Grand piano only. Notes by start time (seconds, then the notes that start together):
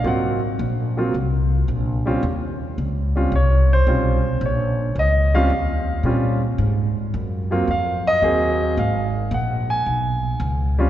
0.04 F#3 A#3 C4 F4 F#5
0.97 F#3 A#3 C4 F4
2.06 G3 C4 C#4 F4
3.16 G3 C4 C#4 F4
3.36 C#5
3.73 C5
3.87 G3 C4 C#4 F4
4.46 C#5
4.99 D#5
5.34 G3 C4 C#4 F4 F5
6.05 G3 C4 C#4 F4
7.51 F#3 A#3 C4 F4
7.71 F5
8.07 D#5
8.23 F#3 A#3 C4 G#4
8.79 F5
9.34 F#5
9.70 G#5
10.79 G3 C4 C#4 F4